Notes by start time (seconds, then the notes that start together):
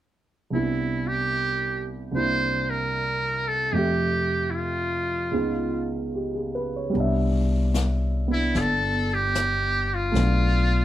0.50 C2 C3 B3 E4
0.55 D4 E4
1.07 G4
2.12 C2 C3 A#3 D4 C5
2.17 E4
2.70 A#4
3.48 A4
3.72 F2 C3 A3 G4 E5
3.77 G4
4.50 E4
4.55 F4
5.31 C#2 C#3 B3 D#4
5.36 F4
6.15 G4
6.35 G#4
6.55 B4
6.76 C#5
6.89 G3 B3
6.94 C2 D4, brush sweep
7.00 E5
7.74 snare, hi-hat pedal
8.28 B3 D4
8.32 E4
8.54 G1, brush sweep, snare
8.59 A4
9.14 G4
9.35 snare, hi-hat pedal
9.94 F4
10.12 B1 A3 B3 D4, brush sweep, snare
10.17 F4